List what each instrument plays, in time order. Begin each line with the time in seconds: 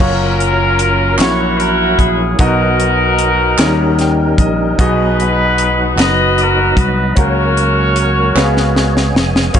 0.00 fingered electric bass F#1, tonewheel organ F#3 C#4 F4 G#4, grand piano F#3 A#3 C#4 F4 C#5, horn section C#4 F4 A#4, kick, crash
0.07 tonewheel organ A#4
0.40 closed hi-hat
0.79 closed hi-hat
1.18 fingered electric bass A#1, grand piano A#2 A#3 C#4 E4 F#4 C#5, tonewheel organ F#3 C#4 E4 A#4, horn section E4 F#4 C#5, snare, clap, closed hi-hat
1.59 horn section A#4, closed hi-hat
1.98 fingered electric bass A#1, horn section G#4, kick, closed hi-hat
2.38 fingered electric bass B1, grand piano B2 B3 D#4 F#4 A#4 D#5, tonewheel organ F#3 B3 D#4 A#4, horn section D#4 F#4 A#4, kick, closed hi-hat
2.80 closed hi-hat
3.19 closed hi-hat
3.58 fingered electric bass D#2, grand piano D#3 C#4 D#4 F4 A#4 D#5, tonewheel organ G3 C#4 D#4 A#4, snare, clap, closed hi-hat
3.67 grand piano G3
3.99 grand piano G5, snare, closed hi-hat
4.38 fingered electric bass A#1, grand piano D#5, kick, closed hi-hat
4.78 fingered electric bass B1, grand piano B2 B3 D#4 F#4 G#4 D#5, tonewheel organ F#3 A#3 D#4 G#4, horn section D#4 F#4 B4, kick, closed hi-hat
4.86 tonewheel organ B3
5.20 closed hi-hat
5.58 closed hi-hat
5.96 fingered electric bass F#1, tonewheel organ F#3 B3 D#4 D#5, grand piano D#4 F#4 A#4, horn section F#4 B4, clap, closed hi-hat
6.00 horn section D#5, snare
6.05 grand piano B3
6.38 horn section A#4, closed hi-hat
6.76 fingered electric bass C2, kick, closed hi-hat
6.81 horn section B4
7.16 fingered electric bass C#2, grand piano C#3 C#4 F#4 A#4, tonewheel organ F#3 A#3 C#4 A#4, horn section F#4 A#4 C#5, kick, closed hi-hat
7.57 closed hi-hat
7.96 closed hi-hat
8.34 fingered electric bass C#2, grand piano C#3 B3 C#4 G#4 B4 F5, tonewheel organ G#3 B3 C#4 G#4, snare, clap
8.44 grand piano C#5
8.57 snare
8.75 tonewheel organ C#5, snare
8.97 snare
9.15 fingered electric bass F1, tonewheel organ G#5, snare
9.36 snare
9.53 fingered electric bass F#1, grand piano F#3 A#3 C#4 F4 C#5, tonewheel organ F#3 C#4 F4 A4, horn section C#4 F4 A#4, kick, closed hi-hat